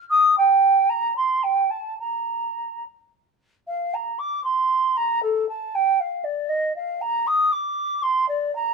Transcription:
0.10 0.35 D#6 medium
0.37 0.91 G5 medium
0.89 1.16 A#5 medium
1.16 1.44 C6 medium
1.43 1.72 G5 medium
1.70 1.99 A5 medium
2.00 2.83 A#5 medium
3.67 3.95 F5 medium
3.94 4.20 A#5 medium
4.18 4.43 D6 medium
4.44 4.98 C6 medium
4.96 5.22 A#5 medium
5.22 5.48 A4 medium
5.49 5.76 A5 medium
5.75 6.01 G5 medium
6.00 6.25 F5 medium
6.24 6.50 D5 medium
6.49 6.74 D#5 medium
6.76 7.02 F5 medium
7.01 7.28 A#5 medium
7.27 7.53 D#6 medium
7.52 8.04 D6 medium
8.02 8.28 C6 medium
8.28 8.54 D5 medium
8.55 8.74 A#5 medium

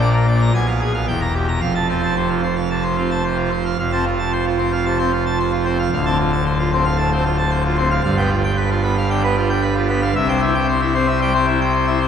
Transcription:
0.00 0.51 A#1 loud
0.00 0.51 A#2 medium
0.00 0.25 A#3 medium
0.00 0.13 D5 medium
0.14 0.26 A#4 medium
0.28 0.40 D5 medium
0.41 0.53 A#5 medium
0.54 1.06 B1 medium
0.54 1.06 B2 medium
0.54 0.66 G#5 loud
0.68 0.80 F5 medium
0.80 0.93 G#4 medium
0.94 1.06 F5 medium
1.07 1.60 E1 medium
1.07 1.60 E2 medium
1.07 1.20 G5 medium
1.21 1.33 A#5 medium
1.34 1.47 G4 medium
1.48 1.60 A#5 medium
1.61 3.74 F1 medium
1.61 3.74 F2 medium
1.61 1.73 F5 medium
1.75 1.87 A5 medium
1.89 2.13 C4 medium
1.89 2.01 F4 medium
2.03 2.15 A5 medium
2.16 2.40 C3 medium
2.16 2.28 C5 medium
2.30 2.42 F4 medium
2.43 2.55 C5 medium
2.56 2.69 F5 medium
2.70 2.95 C3 medium
2.70 2.82 A5 medium
2.83 2.96 C5 medium
2.97 3.22 C4 medium
2.97 3.09 F4 medium
3.11 3.23 A5 medium
3.24 3.49 C3 medium
3.24 3.37 C5 medium
3.37 3.50 F4 medium
3.51 3.63 C5 medium
3.65 3.77 F5 medium
3.79 5.88 F1 medium
3.79 5.88 F2 medium
3.79 3.91 F5 medium
3.92 4.04 C4 medium
3.92 4.04 A5 medium
4.06 4.18 F4 medium
4.19 4.31 A5 medium
4.32 4.45 C5 medium
4.45 4.58 F4 medium
4.58 4.71 C4 medium
4.58 4.71 C5 medium
4.72 4.84 F5 medium
4.86 4.98 C3 medium
4.86 4.98 A5 medium
4.99 5.11 C4 medium
4.99 5.11 C5 medium
5.12 5.24 F4 medium
5.26 5.38 A5 medium
5.40 5.51 C5 medium
5.52 5.64 F4 medium
5.65 5.77 C4 medium
5.65 5.77 C5 medium
5.79 5.90 F5 medium
5.92 8.00 D1 medium
5.92 8.00 D2 medium
5.92 6.04 F5 medium
6.05 6.17 C4 medium
6.05 6.17 A5 medium
6.19 6.31 F4 medium
6.32 6.44 A5 medium
6.45 6.57 C5 medium
6.59 6.70 F4 medium
6.73 6.84 C4 medium
6.73 6.84 C5 medium
6.85 6.97 F5 medium
6.97 7.10 A2 medium
6.97 7.10 A5 medium
7.12 7.24 C4 medium
7.12 7.24 C5 medium
7.25 7.36 F4 medium
7.38 7.50 A5 medium
7.50 7.63 C5 medium
7.64 7.76 F4 medium
7.78 7.90 C4 medium
7.78 7.89 C5 medium
7.91 8.02 F5 medium
8.04 10.12 G1 medium
8.04 10.12 G2 medium
8.04 8.16 F5 medium
8.17 8.29 B3 medium
8.17 8.29 G5 loud
8.30 8.42 F4 medium
8.44 8.56 G5 medium
8.57 8.69 B4 medium
8.70 8.82 F4 medium
8.83 8.95 B3 medium
8.83 8.95 B4 medium
8.97 9.09 F5 medium
9.10 9.22 D3 medium
9.10 9.22 G5 medium
9.24 9.36 B3 medium
9.24 9.35 B4 medium
9.37 9.49 F4 medium
9.49 9.61 G5 medium
9.62 9.74 B4 medium
9.75 9.87 F4 medium
9.89 10.01 B3 medium
9.89 10.01 B4 medium
10.02 10.14 F5 medium
10.15 12.08 C2 loud
10.15 12.08 C3 medium
10.15 10.27 E5 medium
10.28 10.40 C4 medium
10.28 10.40 G5 loud
10.42 10.53 E4 medium
10.54 10.66 G5 medium
10.69 10.80 C5 medium
10.81 10.93 E4 medium
10.95 11.06 C4 medium
10.95 11.06 C5 medium
11.07 11.19 E5 medium
11.21 11.33 G3 medium
11.21 11.33 G5 medium
11.34 11.46 C4 medium
11.34 11.46 C5 medium
11.47 11.59 E4 medium
11.61 11.72 G5 medium
11.74 11.85 C5 medium
11.87 11.98 E4 medium
12.01 12.08 C4 medium
12.01 12.08 C5 medium

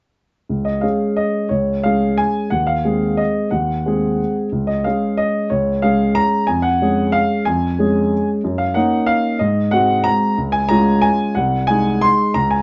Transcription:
0.49 0.82 C#2 soft
0.65 0.82 D#5 medium
0.81 1.47 G#3 soft
0.81 1.47 C#4 soft
0.81 1.47 G#4 soft
0.81 1.16 F5 medium
1.16 1.50 D#5 medium
1.49 1.83 C#2 soft
1.49 1.83 C#5 medium
1.83 2.48 G#3 soft
1.83 2.49 C#4 soft
1.83 2.49 G#4 soft
1.83 2.18 F5 medium
2.17 2.52 G#5 medium
2.50 2.84 D#2 soft
2.50 2.67 F#5 medium
2.67 3.18 F5 medium
2.85 3.49 G#3 soft
2.85 3.49 C4 soft
2.85 3.49 G#4 soft
3.17 3.52 D#5 medium
3.51 3.84 D#2 soft
3.51 4.35 F#5 medium
3.86 4.48 G#3 soft
3.86 4.48 C4 soft
3.86 4.49 G#4 soft
4.52 4.84 C#2 soft
4.67 4.84 D#5 medium
4.84 5.47 G#3 soft
4.84 5.48 C#4 soft
4.84 5.48 G#4 soft
4.84 5.18 F5 medium
5.17 5.50 D#5 medium
5.50 5.82 C#2 soft
5.50 5.83 C#5 medium
5.82 6.44 G#3 soft
5.82 6.45 C#4 soft
5.82 6.45 G#4 soft
5.82 6.16 F5 medium
6.15 6.48 A#5 medium
6.47 6.79 F2 soft
6.47 6.63 G#5 medium
6.62 7.13 F#5 medium
6.82 7.43 G#3 soft
6.82 7.43 C#4 soft
6.82 7.43 G#4 soft
7.12 7.46 F5 medium
7.45 7.78 F2 soft
7.45 8.27 G#5 medium
7.79 8.40 G#3 soft
7.79 8.40 C#4 soft
7.79 8.40 G#4 soft
8.44 8.75 F#2 soft
8.58 8.75 F5 medium
8.74 9.36 A#3 soft
8.74 9.36 C#4 soft
8.74 9.36 D#4 soft
8.74 9.08 F#5 medium
9.06 9.39 F5 medium
9.39 9.71 G#2 soft
9.39 9.72 D#5 medium
9.71 10.34 G#3 soft
9.71 10.34 C4 soft
9.71 10.35 F#4 soft
9.71 10.05 F#5 medium
10.04 10.37 A#5 medium
10.38 10.69 C#2 soft
10.52 10.70 G#5 medium
10.69 11.33 G#3 soft
10.69 11.33 C#4 soft
10.69 11.33 F4 soft
10.69 11.03 A#5 medium
11.01 11.35 G#5 medium
11.35 11.68 C2 soft
11.35 11.68 F#5 medium
11.67 12.32 G#3 soft
11.67 12.32 D#4 soft
11.67 12.32 G#4 soft
11.67 12.02 G#5 medium
12.01 12.35 C6 medium
12.34 12.62 C#2 soft
12.34 12.51 A#5 medium
12.51 12.62 G#5 medium

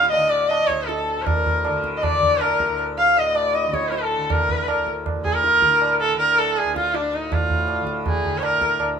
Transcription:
0.00 0.66 D2 medium
0.00 1.17 A2 medium
0.00 0.17 D3 medium
0.00 0.22 F5 medium
0.00 tabla te medium
0.11 0.31 D#5 medium
0.11 tabla tin medium
0.17 1.68 D3 medium
0.22 0.41 D#5 medium
0.30 0.50 D5 medium
0.30 tabla na soft
0.39 0.59 D5 medium
0.49 0.68 D#5 medium
0.49 tabla na medium
0.60 0.99 D#5 medium
0.66 2.67 D2 medium
0.66 0.88 C#5 medium
0.70 tabla ke medium
0.87 1.23 A4 medium
0.87 tabla te medium
0.99 1.34 A4 medium
1.08 tabla te medium
1.17 3.16 A2 medium
1.21 1.83 A#4 medium
1.21 1.27 C#5 medium
1.27 tabla na loud
1.27 tabla ge medium
1.36 1.89 A#4 medium
1.46 tabla ge medium
1.65 2.18 D3 medium
1.65 tabla na medium
1.84 tabla ke soft
1.97 2.04 D#5 medium
2.02 2.42 D5 medium
2.02 tabla na medium
2.02 tabla ge medium
2.12 2.51 D5 medium
2.18 3.66 D3 medium
2.22 tabla ge medium
2.40 2.79 A#4 medium
2.40 tabla na medium
2.49 2.85 A#4 medium
2.60 tabla ke medium
2.67 4.65 D2 medium
2.79 tabla na medium
2.98 3.19 F5 loud
2.98 tabla te medium
3.07 3.27 F5 medium
3.16 5.14 A2 medium
3.16 3.38 D#5 medium
3.16 tabla tin medium
3.26 3.46 D#5 medium
3.35 3.56 D5 medium
3.35 tabla na medium
3.44 3.64 D5 medium
3.55 3.75 D#5 medium
3.55 tabla te medium
3.63 4.16 D3 medium
3.63 4.03 D#5 medium
3.63 tabla te medium
3.74 3.93 C#5 medium
3.74 tabla ke medium
3.83 tabla te medium
3.92 4.32 A4 medium
3.92 tabla te medium
4.01 4.41 A4 medium
4.11 tabla te medium
4.16 5.64 D3 medium
4.30 4.87 A#4 medium
4.30 tabla na medium
4.30 tabla ge medium
4.39 4.92 A#4 medium
4.49 tabla ge medium
4.65 6.63 D2 medium
4.65 tabla na medium
4.87 tabla ke soft
5.06 tabla na medium
5.06 tabla ge medium
5.14 7.13 A2 medium
5.24 5.35 G#4 medium
5.24 tabla ge medium
5.33 5.43 G#4 medium
5.33 5.90 A#4 loud
5.43 5.96 A#4 medium
5.43 tabla te medium
5.54 tabla te medium
5.62 6.14 D3 medium
5.62 tabla ke medium
5.71 tabla te medium
5.82 tabla na medium
6.00 6.18 A4 medium
6.00 tabla te medium
6.14 7.81 D3 soft
6.19 6.40 A#4 medium
6.19 tabla tin medium
6.38 6.59 A4 medium
6.38 tabla na medium
6.57 6.76 G#4 medium
6.57 tabla na medium
6.64 8.77 D2 medium
6.76 6.97 F4 medium
6.76 tabla ke medium
6.94 7.16 D4 medium
6.94 tabla te medium
7.13 7.31 A2 soft
7.13 7.35 D#4 medium
7.13 tabla te medium
7.31 8.99 A2 medium
7.31 7.88 F4 medium
7.31 tabla na medium
7.31 tabla ge medium
7.50 tabla ge medium
7.68 tabla na medium
7.81 8.29 D3 medium
7.87 tabla ke medium
8.06 8.40 G#4 medium
8.06 tabla na medium
8.06 tabla ge medium
8.25 tabla ge medium
8.29 8.99 D3 soft
8.38 8.45 C#5 medium
8.43 8.80 A#4 medium
8.43 tabla na medium
8.62 tabla ke medium
8.77 8.99 D2 medium
8.77 tabla na medium

